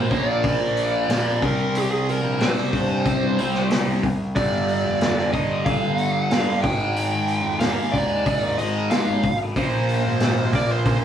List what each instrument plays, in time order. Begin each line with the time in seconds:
Already playing: distorted electric guitar A#3
0.10 picked electric bass A#1, distorted electric guitar A#2 F3 A#3, lead electric guitar D5, kick, open hi-hat
0.44 kick, open hi-hat
0.59 picked electric bass A#1
0.77 open hi-hat
1.08 picked electric bass A#1, distorted electric guitar A#2 F3 A#3, snare, open hi-hat
1.40 picked electric bass C2, distorted electric guitar C3 G3 C4, kick, open hi-hat
1.45 lead electric guitar A#4
1.75 lead electric guitar G#4, open hi-hat
1.82 lead electric guitar G4
1.91 lead electric guitar G#4
2.09 lead electric guitar A#4, open hi-hat
2.23 picked electric bass A#1
2.39 distorted electric guitar C3 G3 C4, lead electric guitar C5, snare, open hi-hat
2.57 snare
2.73 picked electric bass G2, kick, open hi-hat
3.05 kick, open hi-hat
3.23 picked electric bass G2
3.38 picked electric bass C2, distorted electric guitar C3 G3 C4, open hi-hat
3.54 snare
3.70 snare, open hi-hat
3.87 picked electric bass C2
4.03 kick, open hi-hat
4.35 picked electric bass G1, distorted electric guitar G2 D3 G3, lead electric guitar D5, kick, open hi-hat
4.68 open hi-hat
4.85 picked electric bass F1
5.01 snare, open hi-hat
5.19 snare
5.33 picked electric bass G1, distorted electric guitar G2 D3 G3, lead electric guitar D#5, kick, open hi-hat
5.65 lead electric guitar F5, kick, open hi-hat
5.83 picked electric bass G1
5.98 open hi-hat
6.31 picked electric bass G2, distorted electric guitar G2 D3, snare, open hi-hat
6.35 distorted electric guitar G3
6.63 picked electric bass G#1, distorted electric guitar G#2 D#3, lead electric guitar G5, kick, open hi-hat
6.67 distorted electric guitar G#3
6.96 open hi-hat
7.28 open hi-hat
7.43 picked electric bass F1
7.60 distorted electric guitar G#2 D#3, lead electric guitar F5, snare, open hi-hat
7.64 distorted electric guitar G#3
7.92 picked electric bass D#2, lead electric guitar D5, kick, open hi-hat
8.26 kick, open hi-hat
8.42 picked electric bass D#2
8.58 picked electric bass G#1, distorted electric guitar G#2 D#3 G#3, lead electric guitar D#5, open hi-hat
8.91 lead electric guitar F5, snare, open hi-hat
9.07 picked electric bass G#1
9.23 kick, open hi-hat
9.56 picked electric bass A#1, distorted electric guitar A#2 F3 A#3, lead electric guitar C5, kick, open hi-hat
9.89 open hi-hat
10.06 picked electric bass G#1
10.20 snare, open hi-hat
10.52 picked electric bass A#1, distorted electric guitar A#2 F3 A#3, lead electric guitar D5, kick, open hi-hat
10.72 lead electric guitar C5
10.86 lead electric guitar C5, kick, open hi-hat